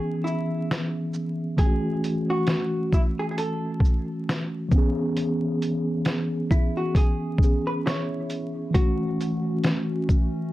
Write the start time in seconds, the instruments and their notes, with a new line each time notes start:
Already playing: tine electric piano E3 B3 C#4 G#4, hollow-body jazz guitar G#4
0.24 hollow-body jazz guitar E4, shaker
0.71 snare, closed hi-hat
1.14 shaker
1.57 tine electric piano E3 A3, hollow-body jazz guitar G#4, kick, closed hi-hat
1.63 tine electric piano C#4 F#4
2.04 closed hi-hat, shaker
2.30 hollow-body jazz guitar F#4
2.47 snare, closed hi-hat
2.92 hollow-body jazz guitar E4, kick, shaker
3.19 hollow-body jazz guitar G#4
3.31 hollow-body jazz guitar G#4
3.38 hollow-body jazz guitar A4, closed hi-hat
3.80 kick
3.85 shaker
4.29 snare, closed hi-hat
4.69 tine electric piano E3 B3, kick, shaker
4.75 tine electric piano C#4 G#4
5.17 closed hi-hat
5.62 closed hi-hat, shaker
6.05 snare, closed hi-hat
6.51 hollow-body jazz guitar E4, kick, shaker
6.77 hollow-body jazz guitar F#4
6.95 hollow-body jazz guitar G#4, kick, closed hi-hat
7.38 tine electric piano E3 B3, kick
7.43 tine electric piano C#4 G#4, shaker
7.67 hollow-body jazz guitar B4
7.86 hollow-body jazz guitar E4 C#5, snare, closed hi-hat
8.30 closed hi-hat, shaker
8.71 tine electric piano E3 A3, ambient pad E3 A3 C#4 F#4, hollow-body jazz guitar F#4, kick
8.75 tine electric piano C#4, closed hi-hat
8.80 tine electric piano F#4
9.21 closed hi-hat, shaker
9.63 snare, closed hi-hat
10.09 kick, shaker